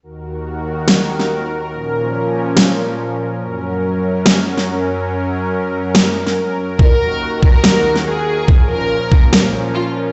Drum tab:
SD |--------o--o----|--------o-------|--------o--o----|--------o--o----|
BD |----------------|----------------|----------------|----------------|

SD |--------o--o----|--------o-------|
BD |o-----o---------|o-----o---------|